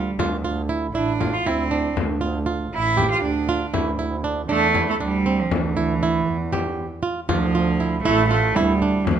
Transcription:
Already playing: double bass D2, nylon-string guitar F4
0.19 double bass D2, nylon-string guitar F4, frame drum
0.44 nylon-string guitar F4, frame drum
0.69 nylon-string guitar E4
0.95 double bass A1, cello D4, nylon-string guitar E4
1.21 nylon-string guitar F4, frame drum
1.33 cello F4
1.45 double bass D2, cello C4, nylon-string guitar E4
1.71 nylon-string guitar D4
1.97 double bass D2, frame drum
2.21 nylon-string guitar F4, frame drum
2.46 nylon-string guitar F4
2.73 double bass A1, cello E4
2.97 nylon-string guitar G4, frame drum
3.11 cello F4
3.23 double bass D2, cello D4
3.49 nylon-string guitar F4
3.74 double bass D2, nylon-string guitar E4, frame drum
3.99 nylon-string guitar E4, frame drum
4.24 nylon-string guitar D4
4.49 double bass E2, cello A3, nylon-string guitar D4
4.74 nylon-string guitar E4, frame drum
4.89 cello A3
5.00 double bass D2, cello G3, nylon-string guitar D4
5.26 nylon-string guitar C4
5.41 cello F3
5.51 double bass D2, cello E3, frame drum
5.77 nylon-string guitar E4, frame drum
6.03 nylon-string guitar E4
6.27 double bass E2, frame drum
6.53 nylon-string guitar G4, frame drum
7.03 nylon-string guitar F4
7.29 double bass D2, cello F3, nylon-string guitar F4, frame drum
7.55 nylon-string guitar F4
7.80 nylon-string guitar E4
8.04 double bass A1, cello A3, nylon-string guitar E4, frame drum
8.29 cello A3, nylon-string guitar F4
8.55 double bass D2, cello G3, nylon-string guitar E4, frame drum
8.81 nylon-string guitar D4, frame drum
9.07 double bass D2, cello F3, frame drum

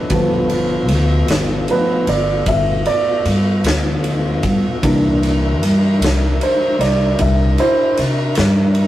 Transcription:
Already playing: upright piano D4 B4
0.09 upright bass G1, upright piano F3 A3 B3, tonewheel organ A3 B3 F4, kick, ride
0.49 ride
0.88 upright bass D2, ride
1.28 upright bass G1, snare, ride
1.68 upright piano F3 A3 B3 B4, ride
2.07 upright bass G1, upright piano D5, ride
2.46 upright bass G1, upright piano E5, kick, ride
2.86 upright piano D5, ride
3.25 upright bass G2, ride
3.64 upright bass D2, snare, ride
4.04 ride
4.43 upright bass G2, kick, ride
4.82 upright bass C2, upright piano E3 A#3 D4, tonewheel organ D4 E4 A#4, kick, ride
5.23 ride
5.62 upright bass G2, ride
6.00 upright bass C2, ride
6.04 snare
6.41 upright piano C5, ride
6.79 upright bass C2, upright piano D5, ride
6.83 snare
7.19 upright bass C2, upright piano E5, kick, ride
7.58 upright piano E4 C5, ride
7.97 upright bass C3, ride
8.35 upright bass G2, snare, ride
8.75 ride

